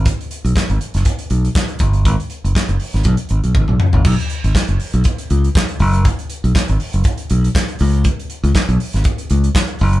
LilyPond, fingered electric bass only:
\new Staff \with { instrumentName = "Fingered electric bass" } { \clef bass \time 4/4 \key gis \minor \tempo 4 = 120 r8. b,,16 r16 gis,,16 r16 fis,,16 r8 b,,8 r8 g,,8 | gis,,16 r8 fis,,16 r16 fis,,16 r16 gis,,16 b,,16 r16 gis,,16 b,,16 gis,,16 b,,16 r16 gis,,16 | b,,16 r8 gis,,16 r16 fis,,16 r16 b,,16 r8 cis,8 r8 fis,,8~ | fis,,16 r8 b,,16 r16 gis,,16 r16 fis,,16 r8 b,,8 r8 cis,8~ |
cis,16 r8 cis,16 r16 b,,16 r16 gis,,16 r8 cis,8 r8 fis,,8 | }